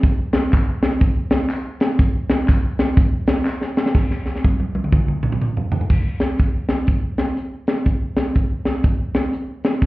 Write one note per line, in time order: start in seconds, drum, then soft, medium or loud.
0.03 kick loud
0.03 closed hi-hat medium
0.03 tambourine medium
0.33 snare loud
0.33 clap medium
0.33 closed hi-hat medium
0.33 tambourine soft
0.53 kick medium
0.53 clap loud
0.53 closed hi-hat loud
0.53 tambourine loud
0.83 snare loud
0.83 closed hi-hat medium
0.83 tambourine medium
1.01 kick loud
1.01 closed hi-hat medium
1.01 tambourine medium
1.31 snare loud
1.31 closed hi-hat medium
1.31 tambourine medium
1.50 clap medium
1.50 closed hi-hat medium
1.50 tambourine loud
1.80 snare loud
1.80 closed hi-hat medium
1.80 tambourine medium
1.99 kick loud
1.99 closed hi-hat medium
1.99 tambourine medium
2.30 snare loud
2.30 closed hi-hat medium
2.30 tambourine soft
2.48 kick loud
2.48 clap loud
2.48 closed hi-hat loud
2.48 tambourine medium
2.79 snare loud
2.79 closed hi-hat medium
2.79 tambourine medium
2.97 kick loud
2.97 closed hi-hat medium
2.97 tambourine medium
3.27 snare loud
3.27 closed hi-hat medium
3.27 tambourine medium
3.45 snare soft
3.45 clap loud
3.45 tambourine medium
3.61 snare medium
3.77 snare loud
3.77 tambourine medium
3.86 snare medium
3.95 kick loud
3.95 snare soft
3.95 crash medium
4.11 snare soft
4.26 snare medium
4.36 snare medium
4.44 kick loud
4.44 high tom medium
4.60 high tom soft
4.75 high tom medium
4.84 mid tom medium
4.92 kick loud
4.92 mid tom medium
5.08 mid tom medium
5.23 mid tom medium
5.32 mid tom medium
5.41 mid tom medium
5.57 floor tom medium
5.72 floor tom loud
5.81 floor tom medium
5.90 kick loud
5.90 crash medium
6.20 snare medium
6.20 closed hi-hat medium
6.39 kick medium
6.39 closed hi-hat medium
6.69 snare medium
6.69 closed hi-hat medium
6.87 kick loud
6.87 closed hi-hat medium
7.18 snare medium
7.18 closed hi-hat medium
7.37 closed hi-hat medium
7.67 snare loud
7.67 closed hi-hat medium
7.86 kick medium
7.86 closed hi-hat medium
8.17 snare loud
8.17 closed hi-hat medium
8.35 kick medium
8.35 closed hi-hat medium
8.65 snare medium
8.65 closed hi-hat medium
8.83 kick loud
8.83 closed hi-hat medium
9.14 snare loud
9.14 closed hi-hat medium
9.33 closed hi-hat medium
9.64 snare loud
9.64 closed hi-hat medium
9.82 kick loud
9.82 closed hi-hat medium